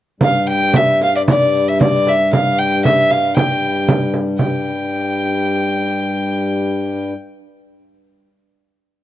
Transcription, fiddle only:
0.24 F5
0.49 G5
0.76 E5
1.03 F5
1.16 D5
1.28 D5
1.69 E5
1.81 D5
2.08 E5
2.33 F5
2.58 G5
2.85 E5
3.11 F5
3.37 G5
4.39 G5

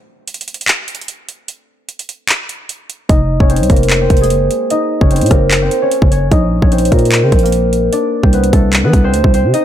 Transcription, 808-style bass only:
3.09 F1
3.40 F1
3.60 C2
3.70 F1
4.10 F1
4.30 F#1
5.01 F#1
5.21 A#2
5.31 F#1
6.02 F#1
6.32 A#1
6.62 A#1
6.92 A#2
7.23 C#3
7.32 A#1
8.23 C2
8.53 C2
8.84 E3
8.93 C2
9.13 D2
9.24 C2
9.44 C3

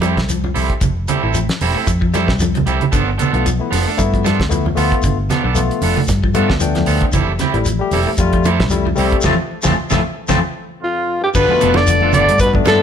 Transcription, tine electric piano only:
3.33 A3 B3 F4
3.59 A3 B3 E4
3.97 A3 B3 E4
4.49 A3 B3 E4
4.75 A3 B3 F4
5.55 A3 B3 F4
6.34 A3 B3 F4
6.60 A3 B3 D4 G5
7.54 G3 A3 E4
7.79 G3 A3 G4
8.19 G3 A3 F4
8.70 G3 A3 E4
8.96 G3 A3 C4
9.24 F3 A3 C4
9.63 F3 A3 C4
9.92 F3 A3 C4
10.29 F3 A3 C4
11.50 A3 B3 F4
12.02 A3 B3 F4
12.54 A3 B3 D4

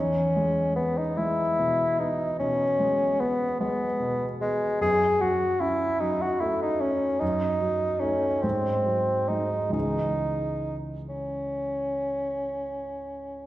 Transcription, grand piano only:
Already playing: E2
0.36 G#3
0.77 B3
1.18 G#3
1.59 B2
2.00 B3
2.40 B2
2.79 G#3
3.20 B3
3.60 G#3
4.00 B2
4.41 B3
4.81 F#2
5.21 F#3
5.60 C#4
6.00 F#3
6.41 A3
6.81 C#4
7.22 F#2
7.61 F#3
8.02 A3 D#4
8.43 G#2
8.86 F#3
9.30 G#3 D#4
9.70 C#2 E3 G#3 C#4

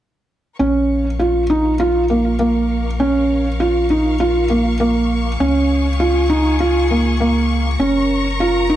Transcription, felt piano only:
0.59 C#4
1.19 F4
1.50 D#4
1.80 F4
2.10 A#3
2.39 A#3
3.00 C#4
3.60 F4
3.90 D#4
4.20 F4
4.50 A#3
4.80 A#3
5.40 C#4
6.00 F4
6.30 D#4
6.60 F4
6.91 A#3
7.20 A#3
7.80 C#4
8.40 F4
8.70 D#4

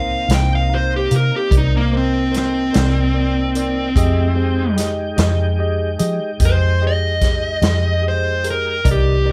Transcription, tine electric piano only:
Already playing: D#4 A#4 C5
0.27 D#4 A#4 F5
0.69 D#4 A#4 F5
1.10 D#4 A#4 F5
1.51 D#4 A#4 D5
1.92 D#4 A#4 C5
2.31 D#4 A#4 C5
2.73 D#4 A#4 D5
3.14 D#4 A#4 D5
3.55 D#4 A#4 D5
3.96 G4 G#4 D#5
4.35 G4 G#4 C5
4.76 G4 G#4 D#5
5.16 G4 G#4 D#5
5.59 G4 G#4 D#5
5.99 G4 G#4 D#5
6.41 G4 G#4 D#5
6.81 G4 G#4 D#5
7.22 G4 G#4 D#5
7.62 G4 G#4 D#5
8.02 G4 G#4 D#5
8.43 G4 G#4 A#4
8.84 D#4 A#4 D5
9.25 D#4 A#4 D5

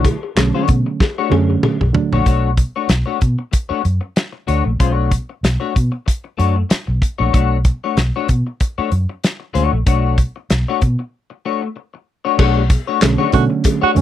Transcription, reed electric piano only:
Already playing: D3 F#3 A3 E4
0.36 D3 F#3 A3 C#4
1.30 D3 F#3 A3 C#4
1.93 D3 F#3 A3 D4
13.01 D3 F#3 A3 C#4
13.33 D3 F#3 A3 C#4
13.95 D3 F#3 A3 C#4

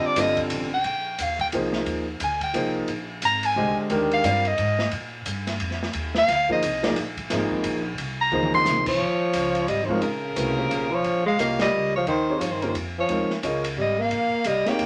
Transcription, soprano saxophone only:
0.06 D5
0.20 D#5
0.74 G5
1.22 F5
1.41 G5
2.24 G#5
2.43 G5
3.25 A#5
3.46 G#5
4.14 F5
4.48 D#5
6.18 F5
6.52 D#5
8.21 A#5
8.54 C6
8.88 C#5
9.69 D#5
9.85 C5
9.91 C#5
10.03 A#4
10.94 C#5
11.28 F5
11.41 F5
11.62 D#5
11.96 C#5
12.10 C5
12.42 C#5
12.51 C5
12.62 A#4
12.69 C5
13.00 C#5
13.82 D#5
14.02 F5
14.48 D#5
14.69 G5

